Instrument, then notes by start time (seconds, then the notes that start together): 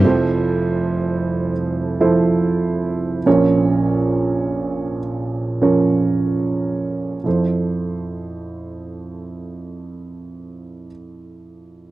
grand piano
0.05 F1 F2 F3 E4 A4 C5
2.00 F3 E4 A4 C5
3.26 A#1 A#2 F3 C#4 A#4 C#5
5.62 F3 C#4 A#4 C#5
7.24 F2 F3 E4 A4
7.28 C5